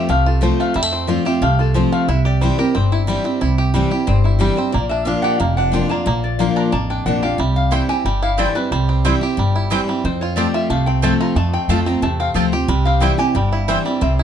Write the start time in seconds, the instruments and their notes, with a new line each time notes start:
Already playing: five-string banjo C4 F4 G4
0.09 upright bass C2, steel-string acoustic guitar C3, five-string banjo A3, resonator guitar played with a steel bar F5
0.26 five-string banjo F4, resonator guitar played with a steel bar A4
0.41 steel-string acoustic guitar F3 A3 C4 F4, five-string banjo F3, resonator guitar played with a steel bar C5
0.60 five-string banjo A3, resonator guitar played with a steel bar F5
0.74 steel-string acoustic guitar F2, upright bass F2, five-string banjo G3, resonator guitar played with a steel bar E5
0.82 five-string banjo A3
0.92 five-string banjo C4, resonator guitar played with a steel bar C5
1.07 steel-string acoustic guitar F3 A3 C4 F4, five-string banjo F4, resonator guitar played with a steel bar D5
1.25 steel-string acoustic guitar C4 F4, five-string banjo G4, resonator guitar played with a steel bar E5
1.41 upright bass C2, steel-string acoustic guitar C3, five-string banjo A3, resonator guitar played with a steel bar F5
1.59 five-string banjo F4, resonator guitar played with a steel bar A4
1.74 steel-string acoustic guitar F3 A3 C4 F4, five-string banjo F3, resonator guitar played with a steel bar C5
1.92 five-string banjo A3, resonator guitar played with a steel bar F5
2.08 upright bass C2, steel-string acoustic guitar C3, five-string banjo E4, resonator guitar played with a steel bar E5
2.25 five-string banjo G4, resonator guitar played with a steel bar D5
2.41 steel-string acoustic guitar E3 G3 C4 E4, five-string banjo G3, resonator guitar played with a steel bar C5
2.58 steel-string acoustic guitar C4 E4, five-string banjo G4, resonator guitar played with a steel bar A#4
2.75 upright bass G1, steel-string acoustic guitar G2, five-string banjo C4, resonator guitar played with a steel bar C5
2.92 five-string banjo E4, resonator guitar played with a steel bar E4
3.07 steel-string acoustic guitar E3 G3 C4 E4, five-string banjo G3
3.24 five-string banjo C4, steel-string acoustic guitar C4 E4
3.41 upright bass C2, steel-string acoustic guitar C3, five-string banjo E4
3.58 five-string banjo G4
3.74 steel-string acoustic guitar E3 G3 C4 E4, five-string banjo G3
3.91 steel-string acoustic guitar C4 E4, five-string banjo G4
4.07 upright bass G1, steel-string acoustic guitar G2, five-string banjo C4, resonator guitar played with a steel bar C5
4.24 resonator guitar played with a steel bar E4, five-string banjo E4
4.39 steel-string acoustic guitar E3 G3 C4 E4, five-string banjo G3, resonator guitar played with a steel bar G4
4.56 five-string banjo C4, steel-string acoustic guitar C4 E4, resonator guitar played with a steel bar C5
4.72 upright bass A#1, steel-string acoustic guitar A#2, five-string banjo A#3, resonator guitar played with a steel bar D5
4.89 five-string banjo D4, resonator guitar played with a steel bar E5
5.05 steel-string acoustic guitar F3 A#3 D4 F4, five-string banjo D4, resonator guitar played with a steel bar F5
5.22 five-string banjo G4, resonator guitar played with a steel bar F#5
5.40 upright bass F1, steel-string acoustic guitar F2, five-string banjo A#3, resonator guitar played with a steel bar F5
5.57 five-string banjo D4, resonator guitar played with a steel bar F#5
5.72 five-string banjo D3, steel-string acoustic guitar F3 A#3 D4 F4, resonator guitar played with a steel bar G5
5.89 five-string banjo A#3, steel-string acoustic guitar D4 F4, resonator guitar played with a steel bar A5
6.06 upright bass A#1, steel-string acoustic guitar A#2, five-string banjo A#3, resonator guitar played with a steel bar A#5
6.24 resonator guitar played with a steel bar D5
6.39 steel-string acoustic guitar F3 A#3 D4 F4, five-string banjo A#3, resonator guitar played with a steel bar F5
6.56 five-string banjo D4, resonator guitar played with a steel bar A#5
6.72 upright bass A1, steel-string acoustic guitar F2, five-string banjo A#3, resonator guitar played with a steel bar A5
6.90 five-string banjo D4, resonator guitar played with a steel bar G5
7.06 upright bass A#1, steel-string acoustic guitar F3 A#3 D4 F4, five-string banjo D4, resonator guitar played with a steel bar F#5
7.22 steel-string acoustic guitar D4 F4, five-string banjo G4, resonator guitar played with a steel bar F5
7.38 upright bass C2, steel-string acoustic guitar C3, five-string banjo G3, resonator guitar played with a steel bar E5
7.56 resonator guitar played with a steel bar F5
7.71 steel-string acoustic guitar E3 G3 C4 E4, mandolin C4 E4 C5 G5, five-string banjo E4, resonator guitar played with a steel bar G5
7.89 steel-string acoustic guitar C4 E4, five-string banjo G4, resonator guitar played with a steel bar G#5
8.05 upright bass G1, steel-string acoustic guitar G2, five-string banjo G3, resonator guitar played with a steel bar G5
8.22 five-string banjo E4, resonator guitar played with a steel bar F5
8.37 steel-string acoustic guitar E3 G3 C4 E4, five-string banjo E3, mandolin C4 E4 C5 G5, resonator guitar played with a steel bar D5
8.55 five-string banjo G3, steel-string acoustic guitar C4 E4, resonator guitar played with a steel bar B4
8.71 upright bass C2, steel-string acoustic guitar C3, five-string banjo G3, resonator guitar played with a steel bar C5
8.89 five-string banjo C4
9.05 steel-string acoustic guitar E3 G3 C4 E4, mandolin C4 E4 C5 G5, five-string banjo E4
9.21 steel-string acoustic guitar C4 E4, five-string banjo G4
9.37 upright bass G1, steel-string acoustic guitar G2, five-string banjo G3
9.56 five-string banjo E4
9.70 steel-string acoustic guitar E3 G3 C4 E4, five-string banjo E3, mandolin C4 E4 C5 G5
9.88 five-string banjo G3, steel-string acoustic guitar C4 E4
10.04 upright bass F2, steel-string acoustic guitar F2, five-string banjo C4, resonator guitar played with a steel bar C5
10.21 five-string banjo F4, resonator guitar played with a steel bar C#5
10.36 steel-string acoustic guitar F3 A3 C4 F4, mandolin C4 F4 C5 A5, five-string banjo G4, resonator guitar played with a steel bar D5
10.54 five-string banjo F4, resonator guitar played with a steel bar E5
10.70 upright bass C2, steel-string acoustic guitar C3, five-string banjo A3, resonator guitar played with a steel bar F5
10.86 five-string banjo C4, resonator guitar played with a steel bar G5
11.02 steel-string acoustic guitar F3 A3 C4 F4, five-string banjo A3, mandolin C4 F4 C5 A5, resonator guitar played with a steel bar A5
11.20 five-string banjo F4, resonator guitar played with a steel bar A#5
11.36 upright bass F2, steel-string acoustic guitar F2, five-string banjo A3, resonator guitar played with a steel bar A5
11.53 five-string banjo C4, resonator guitar played with a steel bar G5
11.68 upright bass F2, steel-string acoustic guitar F3 A3 C4 F4, five-string banjo A3, mandolin C4 F4 C5 A5, resonator guitar played with a steel bar A5
11.86 five-string banjo C4, steel-string acoustic guitar C4 F4, resonator guitar played with a steel bar A#5
12.02 upright bass E2, steel-string acoustic guitar C3, five-string banjo A3, resonator guitar played with a steel bar A5
12.20 five-string banjo C4, resonator guitar played with a steel bar F5
12.34 upright bass D2, steel-string acoustic guitar F3 A3 C4 F4, mandolin C4 F4 C5 A5, five-string banjo F4
12.52 steel-string acoustic guitar C4 F4, five-string banjo G4
12.68 upright bass C2, steel-string acoustic guitar C3, five-string banjo G3
12.85 five-string banjo C4, resonator guitar played with a steel bar F5
13.00 steel-string acoustic guitar E3 G3 C4 E4, mandolin C4 E4 C5 G5, five-string banjo E4, resonator guitar played with a steel bar G5
13.18 steel-string acoustic guitar C4 E4, five-string banjo G4, resonator guitar played with a steel bar G#5
13.35 upright bass G1, steel-string acoustic guitar G2, five-string banjo G3, resonator guitar played with a steel bar G5
13.51 five-string banjo E4, resonator guitar played with a steel bar F5
13.68 five-string banjo E3, steel-string acoustic guitar E3 G3 C4 E4, mandolin C4 E4 C5 G5, resonator guitar played with a steel bar E5
13.85 five-string banjo G3, steel-string acoustic guitar C4 E4, resonator guitar played with a steel bar D5
14.01 upright bass C2, steel-string acoustic guitar C3, five-string banjo C4, resonator guitar played with a steel bar E5
14.19 five-string banjo E4